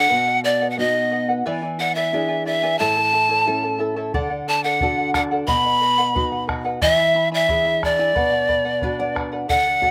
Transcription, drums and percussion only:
4.14 bombo low medium
4.81 bombo low medium
5.14 bombo rim medium
5.14 bombo low medium
5.48 bombo low medium
6.16 bombo low medium
6.49 bombo rim medium
6.49 bombo low medium
6.82 bombo low medium
7.49 bombo low medium
7.83 bombo rim medium
7.83 bombo low medium
8.16 bombo low medium
8.49 bombo low soft
8.82 bombo low medium
9.16 bombo rim medium
9.16 bombo low medium
9.50 bombo low medium
9.82 bombo low medium

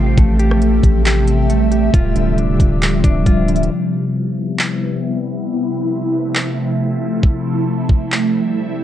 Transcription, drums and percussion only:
0.17 kick loud
0.17 closed hi-hat medium
0.39 closed hi-hat medium
0.51 cross-stick loud
0.61 closed hi-hat medium
0.83 kick medium
0.83 closed hi-hat medium
1.05 clap loud
1.05 closed hi-hat medium
1.28 closed hi-hat medium
1.50 closed hi-hat medium
1.72 closed hi-hat medium
1.94 kick loud
1.94 closed hi-hat medium
2.16 closed hi-hat medium
2.38 closed hi-hat medium
2.60 kick medium
2.60 closed hi-hat medium
2.82 clap loud
2.82 closed hi-hat medium
3.04 kick medium
3.04 closed hi-hat medium
3.26 kick medium
3.26 closed hi-hat medium
3.48 closed hi-hat medium
3.56 closed hi-hat medium
3.63 closed hi-hat medium
4.59 clap loud
6.35 clap loud
7.23 kick loud
7.89 kick medium
8.12 clap loud

